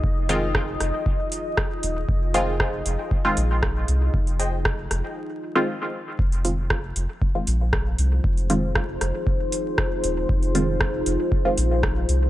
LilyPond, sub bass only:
\new Staff \with { instrumentName = "Sub bass" } { \clef bass \time 4/4 \key f \minor \tempo 4 = 117 f,,4. f,,8 r4. ees,,8 | f,,4. f,,8 r8 bes,,4 c,8 | f,,4. f,,8 r2 | f,,4. f,,8 r8 bes,,4 c,8 |
f,,4. f,,8 r4. ees,,8 | f,,4. f,,8 r8 bes,,4 c,8 | }